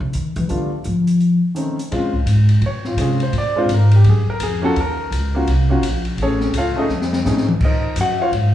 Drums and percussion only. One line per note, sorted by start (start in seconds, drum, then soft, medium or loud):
0.13 closed hi-hat medium
0.36 closed hi-hat soft
0.49 closed hi-hat soft
0.84 closed hi-hat soft
1.07 closed hi-hat medium
1.20 closed hi-hat soft
1.56 closed hi-hat medium
1.79 closed hi-hat soft
1.92 ride medium
2.13 kick soft
2.27 hi-hat pedal soft
2.27 ride medium
2.49 ride medium
2.62 ride soft
2.85 snare soft
2.98 hi-hat pedal medium
2.98 ride medium
3.20 ride soft
3.33 ride medium
3.69 hi-hat pedal medium
3.69 ride medium
3.91 ride medium
4.04 ride medium
4.40 hi-hat pedal medium
4.40 ride medium
4.76 ride medium
5.12 hi-hat pedal medium
5.12 ride medium
5.47 ride medium
5.83 hi-hat pedal medium
5.83 ride medium
6.05 ride soft
6.18 ride medium
6.41 snare soft
6.54 hi-hat pedal medium
6.54 ride medium
6.89 snare soft
7.02 snare medium
7.13 snare medium
7.25 snare medium
7.25 hi-hat pedal medium
7.37 snare medium
7.49 mid tom medium
7.61 kick medium
7.61 crash medium
7.96 hi-hat pedal medium
7.96 ride medium
8.33 ride medium